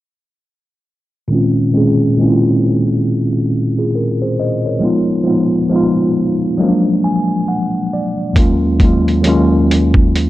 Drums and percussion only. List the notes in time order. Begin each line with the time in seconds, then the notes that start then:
8.36 kick, closed hi-hat
8.80 kick, closed hi-hat
9.08 closed hi-hat
9.24 closed hi-hat
9.71 closed hi-hat
9.94 kick
10.16 closed hi-hat